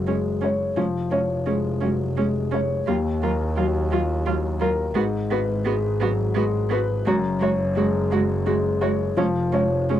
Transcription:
0.00 0.79 F#1 medium
0.00 0.72 F#2 soft
0.00 0.79 F#3 soft
0.00 0.08 G#3 soft
0.00 0.44 C#5 soft
0.07 0.15 G#3 soft
0.07 0.63 G#3 soft
0.07 0.15 C#4 soft
0.41 0.50 G#3 soft
0.41 0.49 C#4 soft
0.41 0.78 C#5 soft
0.76 2.89 F1 medium
0.76 2.83 F3 soft
0.76 0.84 G#3 soft
0.76 0.85 C#4 soft
1.10 1.18 G#3 soft
1.10 1.19 C#4 soft
1.10 1.68 C#5 soft
1.46 1.55 G#3 soft
1.46 2.03 G#3 soft
1.46 1.54 C#4 soft
1.81 2.17 F#3 soft
1.81 1.89 G#3 medium
1.81 1.89 C#4 soft
2.17 2.25 G#3 soft
2.17 2.74 G#3 soft
2.17 2.25 C#4 soft
2.51 2.60 G#3 soft
2.51 2.59 C#4 medium
2.51 2.88 C#5 soft
2.87 4.96 D#2 medium
2.87 4.92 D#2 medium
2.87 2.95 F#3 medium
2.87 2.95 F4 medium
3.22 3.30 F#3 medium
3.22 3.31 F4 soft
3.22 3.78 A#4 soft
3.56 3.64 F#3 medium
3.56 4.13 F#3 medium
3.56 3.65 F4 soft
3.91 3.99 F#3 medium
3.91 4.00 F4 soft
3.91 4.27 F4 soft
4.26 4.34 F#3 medium
4.26 4.82 F#3 soft
4.26 4.34 F4 medium
4.60 4.68 F#3 medium
4.60 4.69 F4 medium
4.60 4.96 A#4 medium
4.95 7.07 G#1 medium
4.95 7.02 G#2 medium
4.95 5.03 B3 medium
4.95 5.03 F#4 medium
5.30 5.38 B3 medium
5.30 5.39 F#4 medium
5.30 5.87 B4 medium
5.65 6.22 G#3 medium
5.65 5.73 B3 medium
5.65 5.74 F#4 medium
6.00 6.37 F#3 medium
6.00 6.08 B3 medium
6.00 6.09 F#4 medium
6.35 6.92 G#3 medium
6.35 6.43 B3 medium
6.35 6.45 F#4 medium
6.69 6.77 B3 medium
6.69 6.79 F#4 medium
6.69 7.06 B4 medium
7.05 9.20 F#1 medium
7.05 9.14 F#2 medium
7.05 7.13 G#3 medium
7.05 7.15 F#4 medium
7.40 7.48 G#3 medium
7.40 7.49 F#4 medium
7.40 7.98 C#5 medium
7.75 7.83 G#3 medium
7.75 8.32 G#3 medium
7.75 7.85 F#4 medium
8.11 8.47 F#3 medium
8.11 8.19 G#3 medium
8.11 8.20 F#4 medium
8.46 9.03 G#3 medium
8.46 8.55 G#3 medium
8.46 8.54 F#4 medium
8.81 8.90 G#3 medium
8.81 8.89 F#4 medium
8.81 9.17 C#5 medium
9.17 10.00 F1 medium
9.17 10.00 F3 medium
9.17 9.25 G#3 medium
9.17 9.25 C#4 medium
9.52 9.60 G#3 medium
9.52 9.60 C#4 medium
9.52 10.00 C#5 medium
9.89 9.98 G#3 medium
9.89 10.00 G#3 medium
9.89 9.97 C#4 medium

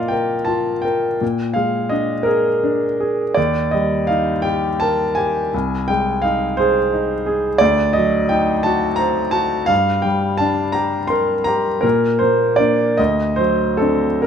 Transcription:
0.00 1.17 A#2 soft
0.00 1.24 A#3 soft
0.00 0.34 F4 soft
0.00 1.23 D5 medium
0.00 1.23 D#5 medium
0.00 0.11 F5 medium
0.08 0.71 A#4 soft
0.08 0.47 G5 medium
0.45 1.06 F4 soft
0.45 0.83 A5 medium
0.82 1.21 A#4 soft
0.82 1.55 G5 medium
1.21 3.33 A#2 soft
1.54 2.13 G#3 soft
1.54 1.91 F5 medium
1.89 2.49 D4 soft
1.89 2.26 D#5 medium
2.23 2.85 G#4 soft
2.23 3.34 A#4 medium
2.63 3.22 D4 soft
3.00 3.37 G#4 soft
3.34 5.49 D#2 soft
3.34 3.72 D5 medium
3.71 4.31 G3 soft
3.71 4.08 D#5 medium
4.07 4.67 D#4 soft
4.07 4.44 F5 medium
4.42 5.02 G4 soft
4.42 4.79 G5 medium
4.80 5.39 A#4 soft
4.80 5.16 A5 medium
5.15 5.54 G4 soft
5.15 5.88 G#5 medium
5.54 7.57 C2 soft
5.88 6.45 G#3 soft
5.88 6.23 G5 medium
6.22 6.78 D#4 soft
6.22 6.57 F5 medium
6.57 7.13 G#4 soft
6.57 7.60 C5 medium
6.93 7.47 D#4 soft
7.26 7.61 G#4 soft
7.58 9.67 D2 medium
7.58 7.94 D5 medium
7.93 8.52 F#3 soft
7.93 8.29 D#5 medium
8.29 8.87 D#4 soft
8.29 8.65 G5 medium
8.63 9.22 F#4 soft
8.63 8.99 A5 medium
8.96 9.56 C5 soft
8.96 9.33 A#5 medium
9.31 9.70 F#4 soft
9.31 9.69 A5 medium
9.66 11.79 G2 soft
9.66 10.04 F5 medium
10.02 10.62 G3 soft
10.02 10.39 G5 medium
10.38 10.97 D4 soft
10.38 10.74 A5 medium
10.72 11.32 G4 soft
10.72 11.10 A#5 medium
11.07 11.68 A#4 soft
11.07 11.45 C6 medium
11.44 11.84 G4 soft
11.44 11.82 A#5 medium
11.81 12.95 A#2 soft
11.81 12.19 A#4 medium
12.19 12.59 A#3 soft
12.19 12.58 C5 medium
12.56 12.95 A#3 soft
12.56 12.95 D4 soft
12.56 12.97 D5 medium
12.97 14.20 D2 soft
12.97 13.38 D#5 medium
13.36 14.05 F#3 soft
13.36 13.79 C5 medium
13.77 14.19 C4 soft
13.77 14.19 D4 soft
13.77 14.22 A4 medium
14.22 14.27 A#4 medium

